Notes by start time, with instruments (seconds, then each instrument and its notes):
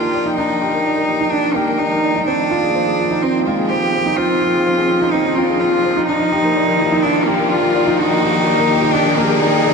Already playing: string section D#3 F3 A#3 G5, grand piano D4 D#4 G4 A#4 D5, cello F4, riser
0.03 grand piano A#4
0.14 grand piano D5
0.26 grand piano D#4
0.36 grand piano D4, cello D#4
0.50 grand piano D#4
0.62 grand piano G4
0.73 grand piano A#4
0.86 grand piano D5
0.97 grand piano A#4
1.09 grand piano G4
1.21 grand piano D#4
1.31 cello D4, grand piano D4
1.44 grand piano D#4
1.54 cello A#3, grand piano G4
1.68 grand piano A#4
1.78 cello D#4, grand piano D5
1.92 grand piano A#4
2.04 grand piano D5
2.16 grand piano D#4
2.26 string section F3, grand piano C4, cello D4
2.40 grand piano D#4
2.51 grand piano F4
2.63 grand piano G#4
2.75 grand piano C5
2.87 grand piano G#4
3.00 grand piano F4
3.11 grand piano D#4
3.22 cello C4, grand piano C4
3.35 grand piano D#4
3.45 cello G#3, grand piano F4
3.59 grand piano G#4
3.69 cello G4, grand piano C5
3.82 grand piano G#4
3.95 grand piano C5
4.06 grand piano D#4
4.16 grand piano C4, cello F4
4.30 grand piano D#4
4.41 grand piano F4
4.54 grand piano G#4
4.66 grand piano C5
4.78 grand piano G#4
4.90 grand piano F4
5.02 grand piano D#4
5.11 grand piano C4, cello D#4
5.25 grand piano D#4
5.36 cello C4, grand piano F4
5.50 grand piano G#4
5.59 cello F4, grand piano C5
5.73 grand piano G#4
5.85 grand piano C5
5.97 grand piano D#4
6.06 grand piano D4, cello D#4
6.20 grand piano D#4
6.32 string section A#3, grand piano G4
6.44 grand piano A#4
6.56 grand piano D5
6.61 string section D#3
6.68 grand piano A#4
6.80 grand piano G4
6.92 grand piano D#4, string section G5
7.02 cello D4, grand piano D4
7.16 grand piano D#4
7.25 cello A#3, grand piano G4
7.39 grand piano A#4
7.49 cello F4, grand piano D5
7.63 grand piano A#4
7.75 grand piano D5
7.87 grand piano D#4
7.98 grand piano D4, cello D#4
8.11 grand piano D#4
8.23 grand piano G4
8.35 grand piano A#4
8.47 grand piano D5
8.59 grand piano A#4
8.71 grand piano G4
8.82 grand piano D#4
8.93 cello D4, grand piano D4
9.06 grand piano D#4
9.16 cello A#3, grand piano G4
9.30 grand piano A#4
9.40 cello D#4, grand piano D5
9.54 grand piano A#4
9.66 grand piano D5